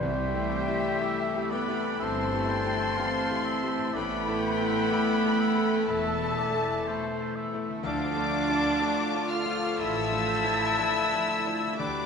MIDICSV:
0, 0, Header, 1, 13, 480
1, 0, Start_track
1, 0, Tempo, 995025
1, 6, Time_signature, 4, 2, 24, 8
1, 966, Tempo, 974026
1, 4806, Tempo, 1001669
1, 5891, End_track
2, 0, Start_track
2, 0, Title_t, "Violin section"
2, 0, Program_c, 0, 48
2, 5, Note_on_c, 0, 79, 112
2, 708, Note_off_c, 0, 79, 0
2, 727, Note_on_c, 0, 83, 108
2, 966, Note_off_c, 0, 83, 0
2, 974, Note_on_c, 0, 84, 120
2, 1926, Note_on_c, 0, 83, 127
2, 1929, Note_off_c, 0, 84, 0
2, 2867, Note_off_c, 0, 83, 0
2, 2881, Note_on_c, 0, 81, 127
2, 3608, Note_off_c, 0, 81, 0
2, 3846, Note_on_c, 0, 86, 127
2, 4543, Note_off_c, 0, 86, 0
2, 4558, Note_on_c, 0, 89, 116
2, 4802, Note_on_c, 0, 88, 127
2, 4805, Note_off_c, 0, 89, 0
2, 5758, Note_on_c, 0, 86, 127
2, 5763, Note_off_c, 0, 88, 0
2, 5891, Note_off_c, 0, 86, 0
2, 5891, End_track
3, 0, Start_track
3, 0, Title_t, "Flute"
3, 0, Program_c, 1, 73
3, 3, Note_on_c, 1, 76, 109
3, 728, Note_on_c, 1, 79, 83
3, 735, Note_off_c, 1, 76, 0
3, 965, Note_on_c, 1, 81, 107
3, 972, Note_off_c, 1, 79, 0
3, 1920, Note_off_c, 1, 81, 0
3, 1923, Note_on_c, 1, 79, 119
3, 2884, Note_on_c, 1, 76, 106
3, 2891, Note_off_c, 1, 79, 0
3, 3609, Note_off_c, 1, 76, 0
3, 3850, Note_on_c, 1, 81, 113
3, 4562, Note_on_c, 1, 86, 93
3, 4570, Note_off_c, 1, 81, 0
3, 4803, Note_on_c, 1, 81, 115
3, 4810, Note_off_c, 1, 86, 0
3, 5759, Note_off_c, 1, 81, 0
3, 5762, Note_on_c, 1, 83, 104
3, 5891, Note_off_c, 1, 83, 0
3, 5891, End_track
4, 0, Start_track
4, 0, Title_t, "Oboe"
4, 0, Program_c, 2, 68
4, 6, Note_on_c, 2, 72, 94
4, 491, Note_on_c, 2, 76, 93
4, 499, Note_off_c, 2, 72, 0
4, 725, Note_on_c, 2, 74, 87
4, 733, Note_off_c, 2, 76, 0
4, 959, Note_off_c, 2, 74, 0
4, 962, Note_on_c, 2, 76, 105
4, 1205, Note_on_c, 2, 79, 91
4, 1212, Note_off_c, 2, 76, 0
4, 1444, Note_on_c, 2, 77, 103
4, 1452, Note_off_c, 2, 79, 0
4, 1674, Note_off_c, 2, 77, 0
4, 1677, Note_on_c, 2, 76, 99
4, 1920, Note_on_c, 2, 74, 91
4, 1927, Note_off_c, 2, 76, 0
4, 2166, Note_on_c, 2, 72, 79
4, 2173, Note_off_c, 2, 74, 0
4, 2399, Note_on_c, 2, 74, 89
4, 2406, Note_off_c, 2, 72, 0
4, 2646, Note_on_c, 2, 76, 97
4, 2654, Note_off_c, 2, 74, 0
4, 2801, Note_off_c, 2, 76, 0
4, 2885, Note_on_c, 2, 76, 104
4, 3125, Note_on_c, 2, 74, 89
4, 3132, Note_off_c, 2, 76, 0
4, 3366, Note_on_c, 2, 72, 104
4, 3374, Note_off_c, 2, 74, 0
4, 3606, Note_on_c, 2, 76, 102
4, 3614, Note_off_c, 2, 72, 0
4, 3845, Note_off_c, 2, 76, 0
4, 3848, Note_on_c, 2, 77, 110
4, 4317, Note_on_c, 2, 74, 92
4, 4325, Note_off_c, 2, 77, 0
4, 4798, Note_on_c, 2, 69, 92
4, 4806, Note_off_c, 2, 74, 0
4, 5040, Note_on_c, 2, 72, 82
4, 5047, Note_off_c, 2, 69, 0
4, 5278, Note_on_c, 2, 71, 77
4, 5285, Note_off_c, 2, 72, 0
4, 5518, Note_on_c, 2, 69, 88
4, 5525, Note_off_c, 2, 71, 0
4, 5754, Note_off_c, 2, 69, 0
4, 5757, Note_on_c, 2, 71, 87
4, 5891, Note_off_c, 2, 71, 0
4, 5891, End_track
5, 0, Start_track
5, 0, Title_t, "Clarinet"
5, 0, Program_c, 3, 71
5, 8, Note_on_c, 3, 67, 106
5, 735, Note_on_c, 3, 71, 101
5, 742, Note_off_c, 3, 67, 0
5, 975, Note_on_c, 3, 72, 101
5, 983, Note_off_c, 3, 71, 0
5, 1926, Note_off_c, 3, 72, 0
5, 1929, Note_on_c, 3, 71, 112
5, 2889, Note_on_c, 3, 69, 98
5, 2896, Note_off_c, 3, 71, 0
5, 3612, Note_off_c, 3, 69, 0
5, 3855, Note_on_c, 3, 74, 107
5, 4566, Note_on_c, 3, 77, 91
5, 4573, Note_off_c, 3, 74, 0
5, 4808, Note_on_c, 3, 76, 115
5, 4816, Note_off_c, 3, 77, 0
5, 5764, Note_on_c, 3, 74, 103
5, 5771, Note_off_c, 3, 76, 0
5, 5891, Note_off_c, 3, 74, 0
5, 5891, End_track
6, 0, Start_track
6, 0, Title_t, "French horn section"
6, 0, Program_c, 4, 60
6, 0, Note_on_c, 4, 74, 82
6, 7, Note_on_c, 4, 52, 91
6, 472, Note_off_c, 4, 74, 0
6, 489, Note_on_c, 4, 69, 86
6, 1906, Note_off_c, 4, 52, 0
6, 1923, Note_off_c, 4, 69, 0
6, 1928, Note_on_c, 4, 69, 90
6, 1930, Note_on_c, 4, 52, 94
6, 3770, Note_off_c, 4, 52, 0
6, 3770, Note_off_c, 4, 69, 0
6, 3854, Note_on_c, 4, 53, 98
6, 3854, Note_on_c, 4, 69, 110
6, 5749, Note_off_c, 4, 53, 0
6, 5749, Note_off_c, 4, 69, 0
6, 5765, Note_on_c, 4, 55, 91
6, 5766, Note_on_c, 4, 62, 94
6, 5891, Note_off_c, 4, 55, 0
6, 5891, Note_off_c, 4, 62, 0
6, 5891, End_track
7, 0, Start_track
7, 0, Title_t, "Grand piano"
7, 0, Program_c, 5, 0
7, 0, Control_c, 5, 64, 127
7, 13, Note_on_c, 5, 36, 84
7, 15, Control_c, 5, 64, 0
7, 94, Control_c, 5, 64, 127
7, 166, Note_off_c, 5, 36, 0
7, 166, Note_on_c, 5, 57, 64
7, 170, Note_on_c, 5, 64, 63
7, 172, Note_on_c, 5, 67, 73
7, 311, Note_off_c, 5, 57, 0
7, 313, Note_off_c, 5, 64, 0
7, 314, Note_off_c, 5, 67, 0
7, 329, Note_on_c, 5, 64, 62
7, 330, Note_on_c, 5, 57, 61
7, 335, Note_on_c, 5, 67, 69
7, 473, Note_off_c, 5, 57, 0
7, 473, Note_off_c, 5, 64, 0
7, 476, Note_off_c, 5, 67, 0
7, 490, Note_on_c, 5, 57, 65
7, 493, Note_on_c, 5, 64, 70
7, 494, Note_on_c, 5, 67, 67
7, 633, Note_off_c, 5, 57, 0
7, 635, Note_off_c, 5, 64, 0
7, 635, Note_off_c, 5, 67, 0
7, 655, Note_on_c, 5, 57, 63
7, 656, Note_on_c, 5, 64, 61
7, 659, Note_on_c, 5, 67, 63
7, 795, Note_off_c, 5, 57, 0
7, 796, Note_off_c, 5, 64, 0
7, 798, Note_off_c, 5, 67, 0
7, 811, Note_on_c, 5, 64, 60
7, 812, Note_on_c, 5, 57, 60
7, 813, Note_on_c, 5, 67, 63
7, 953, Note_off_c, 5, 57, 0
7, 953, Note_off_c, 5, 64, 0
7, 953, Note_off_c, 5, 67, 0
7, 968, Note_on_c, 5, 43, 68
7, 1124, Note_off_c, 5, 43, 0
7, 1126, Note_on_c, 5, 57, 64
7, 1128, Note_on_c, 5, 64, 61
7, 1131, Note_on_c, 5, 67, 61
7, 1271, Note_off_c, 5, 57, 0
7, 1272, Note_off_c, 5, 64, 0
7, 1274, Note_off_c, 5, 67, 0
7, 1287, Note_on_c, 5, 57, 59
7, 1289, Note_on_c, 5, 64, 58
7, 1291, Note_on_c, 5, 67, 67
7, 1431, Note_off_c, 5, 57, 0
7, 1432, Note_off_c, 5, 64, 0
7, 1433, Note_off_c, 5, 67, 0
7, 1448, Note_on_c, 5, 57, 61
7, 1452, Note_on_c, 5, 52, 59
7, 1452, Note_on_c, 5, 67, 68
7, 1590, Note_off_c, 5, 57, 0
7, 1592, Note_off_c, 5, 52, 0
7, 1593, Note_off_c, 5, 67, 0
7, 1609, Note_on_c, 5, 57, 57
7, 1610, Note_on_c, 5, 64, 56
7, 1611, Note_on_c, 5, 67, 60
7, 1750, Note_off_c, 5, 57, 0
7, 1751, Note_off_c, 5, 64, 0
7, 1752, Note_off_c, 5, 67, 0
7, 1765, Note_on_c, 5, 57, 65
7, 1766, Note_on_c, 5, 64, 58
7, 1769, Note_on_c, 5, 67, 68
7, 1909, Note_off_c, 5, 57, 0
7, 1910, Note_off_c, 5, 64, 0
7, 1912, Note_off_c, 5, 67, 0
7, 1923, Note_on_c, 5, 33, 84
7, 1933, Control_c, 5, 64, 0
7, 2015, Control_c, 5, 64, 127
7, 2081, Note_off_c, 5, 33, 0
7, 2087, Note_on_c, 5, 57, 63
7, 2090, Note_on_c, 5, 64, 68
7, 2092, Note_on_c, 5, 69, 73
7, 2232, Note_off_c, 5, 57, 0
7, 2234, Note_off_c, 5, 64, 0
7, 2235, Note_off_c, 5, 69, 0
7, 2244, Note_on_c, 5, 57, 63
7, 2249, Note_on_c, 5, 64, 58
7, 2250, Note_on_c, 5, 69, 65
7, 2390, Note_off_c, 5, 57, 0
7, 2393, Note_off_c, 5, 64, 0
7, 2393, Note_off_c, 5, 69, 0
7, 2405, Note_on_c, 5, 57, 65
7, 2406, Note_on_c, 5, 64, 66
7, 2407, Note_on_c, 5, 69, 78
7, 2550, Note_off_c, 5, 57, 0
7, 2550, Note_off_c, 5, 64, 0
7, 2551, Note_off_c, 5, 69, 0
7, 2567, Note_on_c, 5, 57, 63
7, 2567, Note_on_c, 5, 64, 57
7, 2572, Note_on_c, 5, 69, 68
7, 2710, Note_off_c, 5, 57, 0
7, 2710, Note_off_c, 5, 64, 0
7, 2713, Note_off_c, 5, 69, 0
7, 2724, Note_on_c, 5, 57, 58
7, 2727, Note_on_c, 5, 64, 58
7, 2728, Note_on_c, 5, 69, 71
7, 2869, Note_off_c, 5, 57, 0
7, 2870, Note_off_c, 5, 64, 0
7, 2871, Note_off_c, 5, 69, 0
7, 2885, Note_on_c, 5, 40, 67
7, 3041, Note_off_c, 5, 40, 0
7, 3041, Note_on_c, 5, 57, 64
7, 3043, Note_on_c, 5, 64, 57
7, 3046, Note_on_c, 5, 69, 67
7, 3189, Note_off_c, 5, 57, 0
7, 3190, Note_off_c, 5, 64, 0
7, 3191, Note_off_c, 5, 69, 0
7, 3203, Note_on_c, 5, 57, 60
7, 3205, Note_on_c, 5, 64, 58
7, 3207, Note_on_c, 5, 69, 65
7, 3350, Note_off_c, 5, 57, 0
7, 3352, Note_off_c, 5, 64, 0
7, 3353, Note_off_c, 5, 69, 0
7, 3365, Note_on_c, 5, 57, 64
7, 3366, Note_on_c, 5, 64, 56
7, 3370, Note_on_c, 5, 69, 67
7, 3512, Note_off_c, 5, 57, 0
7, 3512, Note_off_c, 5, 64, 0
7, 3515, Note_off_c, 5, 69, 0
7, 3531, Note_on_c, 5, 57, 57
7, 3531, Note_on_c, 5, 64, 59
7, 3535, Note_on_c, 5, 69, 62
7, 3675, Note_off_c, 5, 57, 0
7, 3675, Note_off_c, 5, 64, 0
7, 3677, Note_off_c, 5, 69, 0
7, 3690, Note_on_c, 5, 57, 61
7, 3692, Note_on_c, 5, 64, 60
7, 3696, Note_on_c, 5, 69, 68
7, 3833, Note_off_c, 5, 57, 0
7, 3835, Note_off_c, 5, 64, 0
7, 3837, Note_off_c, 5, 69, 0
7, 3841, Note_on_c, 5, 38, 83
7, 3857, Control_c, 5, 64, 0
7, 3941, Control_c, 5, 64, 127
7, 3999, Note_off_c, 5, 38, 0
7, 4000, Note_on_c, 5, 57, 70
7, 4005, Note_on_c, 5, 62, 66
7, 4007, Note_on_c, 5, 65, 68
7, 4146, Note_off_c, 5, 57, 0
7, 4148, Note_off_c, 5, 62, 0
7, 4149, Note_off_c, 5, 65, 0
7, 4164, Note_on_c, 5, 57, 55
7, 4165, Note_on_c, 5, 62, 57
7, 4165, Note_on_c, 5, 65, 59
7, 4307, Note_off_c, 5, 57, 0
7, 4308, Note_off_c, 5, 62, 0
7, 4308, Note_off_c, 5, 65, 0
7, 4318, Note_on_c, 5, 62, 64
7, 4320, Note_on_c, 5, 57, 68
7, 4324, Note_on_c, 5, 65, 72
7, 4465, Note_off_c, 5, 62, 0
7, 4466, Note_off_c, 5, 57, 0
7, 4468, Note_off_c, 5, 65, 0
7, 4482, Note_on_c, 5, 57, 57
7, 4483, Note_on_c, 5, 62, 62
7, 4484, Note_on_c, 5, 65, 69
7, 4629, Note_off_c, 5, 57, 0
7, 4629, Note_off_c, 5, 62, 0
7, 4630, Note_off_c, 5, 65, 0
7, 4637, Note_on_c, 5, 57, 55
7, 4637, Note_on_c, 5, 62, 60
7, 4641, Note_on_c, 5, 65, 62
7, 4787, Note_off_c, 5, 57, 0
7, 4787, Note_off_c, 5, 62, 0
7, 4789, Note_off_c, 5, 65, 0
7, 4799, Note_on_c, 5, 45, 65
7, 4957, Note_off_c, 5, 45, 0
7, 4963, Note_on_c, 5, 57, 56
7, 4963, Note_on_c, 5, 62, 55
7, 4964, Note_on_c, 5, 53, 64
7, 5106, Note_off_c, 5, 57, 0
7, 5106, Note_off_c, 5, 62, 0
7, 5107, Note_off_c, 5, 53, 0
7, 5117, Note_on_c, 5, 57, 53
7, 5119, Note_on_c, 5, 53, 66
7, 5120, Note_on_c, 5, 62, 54
7, 5262, Note_off_c, 5, 57, 0
7, 5264, Note_off_c, 5, 53, 0
7, 5264, Note_off_c, 5, 62, 0
7, 5277, Note_on_c, 5, 57, 56
7, 5279, Note_on_c, 5, 62, 56
7, 5281, Note_on_c, 5, 53, 69
7, 5423, Note_off_c, 5, 57, 0
7, 5424, Note_off_c, 5, 62, 0
7, 5426, Note_off_c, 5, 53, 0
7, 5444, Note_on_c, 5, 57, 52
7, 5447, Note_on_c, 5, 62, 52
7, 5448, Note_on_c, 5, 53, 57
7, 5588, Note_off_c, 5, 57, 0
7, 5590, Note_off_c, 5, 62, 0
7, 5591, Note_off_c, 5, 53, 0
7, 5601, Note_on_c, 5, 57, 58
7, 5603, Note_on_c, 5, 62, 56
7, 5606, Note_on_c, 5, 53, 60
7, 5748, Note_off_c, 5, 57, 0
7, 5749, Note_off_c, 5, 62, 0
7, 5751, Note_off_c, 5, 53, 0
7, 5764, Note_on_c, 5, 38, 74
7, 5774, Control_c, 5, 64, 0
7, 5864, Control_c, 5, 64, 127
7, 5891, Note_off_c, 5, 38, 0
7, 5891, End_track
8, 0, Start_track
8, 0, Title_t, "Cello section"
8, 0, Program_c, 6, 48
8, 9, Note_on_c, 6, 55, 89
8, 710, Note_off_c, 6, 55, 0
8, 730, Note_on_c, 6, 59, 96
8, 968, Note_off_c, 6, 59, 0
8, 973, Note_on_c, 6, 60, 95
8, 1927, Note_on_c, 6, 59, 117
8, 1928, Note_off_c, 6, 60, 0
8, 2867, Note_off_c, 6, 59, 0
8, 2887, Note_on_c, 6, 57, 96
8, 3611, Note_off_c, 6, 57, 0
8, 3850, Note_on_c, 6, 62, 109
8, 4546, Note_off_c, 6, 62, 0
8, 4568, Note_on_c, 6, 65, 97
8, 4808, Note_on_c, 6, 64, 119
8, 4810, Note_off_c, 6, 65, 0
8, 5766, Note_off_c, 6, 64, 0
8, 5766, Note_on_c, 6, 62, 101
8, 5891, Note_off_c, 6, 62, 0
8, 5891, End_track
9, 0, Start_track
9, 0, Title_t, "Viola section"
9, 0, Program_c, 7, 48
9, 5, Note_on_c, 7, 55, 111
9, 708, Note_off_c, 7, 55, 0
9, 726, Note_on_c, 7, 59, 92
9, 965, Note_off_c, 7, 59, 0
9, 965, Note_on_c, 7, 60, 94
9, 1905, Note_off_c, 7, 60, 0
9, 1925, Note_on_c, 7, 57, 127
9, 2866, Note_off_c, 7, 57, 0
9, 2888, Note_on_c, 7, 57, 104
9, 3612, Note_off_c, 7, 57, 0
9, 3851, Note_on_c, 7, 62, 122
9, 4546, Note_off_c, 7, 62, 0
9, 4565, Note_on_c, 7, 65, 96
9, 4808, Note_off_c, 7, 65, 0
9, 4808, Note_on_c, 7, 76, 110
9, 5765, Note_on_c, 7, 62, 115
9, 5766, Note_off_c, 7, 76, 0
9, 5891, Note_off_c, 7, 62, 0
9, 5891, End_track
10, 0, Start_track
10, 0, Title_t, "Harp"
10, 0, Program_c, 8, 46
10, 0, Note_on_c, 8, 48, 72
10, 0, Note_on_c, 8, 52, 65
10, 0, Note_on_c, 8, 57, 64
10, 0, Note_on_c, 8, 67, 54
10, 1817, Note_off_c, 8, 48, 0
10, 1839, Note_off_c, 8, 57, 0
10, 1841, Note_on_c, 8, 45, 76
10, 1860, Note_off_c, 8, 52, 0
10, 1862, Note_on_c, 8, 57, 65
10, 1883, Note_off_c, 8, 67, 0
10, 1908, Note_on_c, 8, 69, 60
10, 3763, Note_off_c, 8, 45, 0
10, 3763, Note_on_c, 8, 50, 73
10, 3781, Note_off_c, 8, 57, 0
10, 3786, Note_on_c, 8, 57, 58
10, 3809, Note_on_c, 8, 62, 62
10, 3829, Note_on_c, 8, 53, 60
10, 3830, Note_off_c, 8, 69, 0
10, 5661, Note_off_c, 8, 50, 0
10, 5678, Note_on_c, 8, 50, 71
10, 5683, Note_off_c, 8, 57, 0
10, 5700, Note_on_c, 8, 55, 54
10, 5705, Note_off_c, 8, 62, 0
10, 5722, Note_on_c, 8, 62, 57
10, 5725, Note_off_c, 8, 53, 0
10, 5743, Note_on_c, 8, 67, 60
10, 5891, Note_off_c, 8, 50, 0
10, 5891, Note_off_c, 8, 55, 0
10, 5891, Note_off_c, 8, 62, 0
10, 5891, Note_off_c, 8, 67, 0
10, 5891, End_track
11, 0, Start_track
11, 0, Title_t, "Violin section"
11, 0, Program_c, 10, 48
11, 8, Note_on_c, 10, 64, 83
11, 9, Note_on_c, 10, 55, 75
11, 120, Note_off_c, 10, 55, 0
11, 137, Note_on_c, 10, 57, 71
11, 252, Note_off_c, 10, 57, 0
11, 255, Note_on_c, 10, 55, 74
11, 368, Note_on_c, 10, 57, 72
11, 372, Note_off_c, 10, 55, 0
11, 483, Note_on_c, 10, 55, 74
11, 488, Note_off_c, 10, 57, 0
11, 603, Note_on_c, 10, 57, 79
11, 606, Note_off_c, 10, 55, 0
11, 723, Note_on_c, 10, 55, 73
11, 725, Note_off_c, 10, 57, 0
11, 845, Note_off_c, 10, 55, 0
11, 850, Note_on_c, 10, 57, 78
11, 960, Note_on_c, 10, 55, 89
11, 968, Note_off_c, 10, 57, 0
11, 1076, Note_off_c, 10, 55, 0
11, 1087, Note_on_c, 10, 57, 79
11, 1203, Note_on_c, 10, 55, 80
11, 1208, Note_off_c, 10, 57, 0
11, 1324, Note_on_c, 10, 57, 74
11, 1326, Note_off_c, 10, 55, 0
11, 1445, Note_off_c, 10, 57, 0
11, 1448, Note_on_c, 10, 55, 80
11, 1560, Note_on_c, 10, 57, 71
11, 1566, Note_off_c, 10, 55, 0
11, 1674, Note_on_c, 10, 55, 73
11, 1682, Note_off_c, 10, 57, 0
11, 1794, Note_on_c, 10, 57, 70
11, 1799, Note_off_c, 10, 55, 0
11, 1907, Note_off_c, 10, 64, 0
11, 1916, Note_off_c, 10, 57, 0
11, 1919, Note_on_c, 10, 64, 97
11, 1922, Note_on_c, 10, 57, 80
11, 2036, Note_off_c, 10, 57, 0
11, 2043, Note_on_c, 10, 57, 77
11, 2164, Note_off_c, 10, 57, 0
11, 2170, Note_on_c, 10, 57, 77
11, 2282, Note_off_c, 10, 57, 0
11, 2288, Note_on_c, 10, 57, 71
11, 2406, Note_off_c, 10, 57, 0
11, 2412, Note_on_c, 10, 57, 77
11, 2516, Note_off_c, 10, 57, 0
11, 2522, Note_on_c, 10, 57, 78
11, 2642, Note_off_c, 10, 57, 0
11, 2648, Note_on_c, 10, 57, 75
11, 2760, Note_off_c, 10, 57, 0
11, 2765, Note_on_c, 10, 57, 79
11, 2885, Note_off_c, 10, 57, 0
11, 2892, Note_on_c, 10, 57, 88
11, 2998, Note_off_c, 10, 57, 0
11, 3004, Note_on_c, 10, 57, 83
11, 3123, Note_off_c, 10, 57, 0
11, 3129, Note_on_c, 10, 57, 79
11, 3242, Note_off_c, 10, 57, 0
11, 3248, Note_on_c, 10, 57, 74
11, 3361, Note_off_c, 10, 57, 0
11, 3367, Note_on_c, 10, 57, 83
11, 3476, Note_off_c, 10, 57, 0
11, 3482, Note_on_c, 10, 57, 74
11, 3604, Note_off_c, 10, 57, 0
11, 3610, Note_on_c, 10, 57, 70
11, 3721, Note_off_c, 10, 57, 0
11, 3727, Note_on_c, 10, 57, 73
11, 3826, Note_off_c, 10, 64, 0
11, 3845, Note_off_c, 10, 57, 0
11, 3851, Note_on_c, 10, 57, 81
11, 3855, Note_on_c, 10, 65, 94
11, 3961, Note_off_c, 10, 57, 0
11, 3967, Note_on_c, 10, 57, 77
11, 4086, Note_off_c, 10, 57, 0
11, 4093, Note_on_c, 10, 57, 80
11, 4208, Note_off_c, 10, 57, 0
11, 4221, Note_on_c, 10, 57, 70
11, 4323, Note_off_c, 10, 57, 0
11, 4329, Note_on_c, 10, 57, 75
11, 4441, Note_off_c, 10, 57, 0
11, 4447, Note_on_c, 10, 57, 72
11, 4567, Note_off_c, 10, 57, 0
11, 4574, Note_on_c, 10, 57, 75
11, 4686, Note_off_c, 10, 57, 0
11, 4692, Note_on_c, 10, 57, 76
11, 4801, Note_off_c, 10, 57, 0
11, 4807, Note_on_c, 10, 57, 85
11, 4917, Note_off_c, 10, 57, 0
11, 4929, Note_on_c, 10, 57, 75
11, 5043, Note_off_c, 10, 57, 0
11, 5049, Note_on_c, 10, 57, 78
11, 5158, Note_off_c, 10, 57, 0
11, 5164, Note_on_c, 10, 57, 68
11, 5272, Note_off_c, 10, 57, 0
11, 5278, Note_on_c, 10, 57, 74
11, 5389, Note_off_c, 10, 57, 0
11, 5395, Note_on_c, 10, 57, 69
11, 5509, Note_off_c, 10, 57, 0
11, 5515, Note_on_c, 10, 57, 66
11, 5637, Note_off_c, 10, 57, 0
11, 5643, Note_on_c, 10, 57, 64
11, 5761, Note_on_c, 10, 55, 74
11, 5764, Note_on_c, 10, 67, 78
11, 5765, Note_off_c, 10, 57, 0
11, 5768, Note_off_c, 10, 65, 0
11, 5876, Note_off_c, 10, 55, 0
11, 5891, Note_off_c, 10, 67, 0
11, 5891, End_track
12, 0, Start_track
12, 0, Title_t, "Timpani"
12, 0, Program_c, 11, 47
12, 3, Note_on_c, 11, 48, 100
12, 707, Note_off_c, 11, 48, 0
12, 5891, End_track
13, 0, Start_track
13, 0, Title_t, "Double bass section"
13, 0, Program_c, 12, 48
13, 0, Note_on_c, 12, 36, 89
13, 405, Note_off_c, 12, 36, 0
13, 966, Note_on_c, 12, 31, 96
13, 1368, Note_off_c, 12, 31, 0
13, 1931, Note_on_c, 12, 33, 87
13, 2331, Note_off_c, 12, 33, 0
13, 2886, Note_on_c, 12, 28, 94
13, 3289, Note_off_c, 12, 28, 0
13, 3851, Note_on_c, 12, 38, 100
13, 4245, Note_off_c, 12, 38, 0
13, 4809, Note_on_c, 12, 33, 90
13, 5202, Note_off_c, 12, 33, 0
13, 5766, Note_on_c, 12, 38, 88
13, 5891, Note_off_c, 12, 38, 0
13, 5891, End_track
0, 0, End_of_file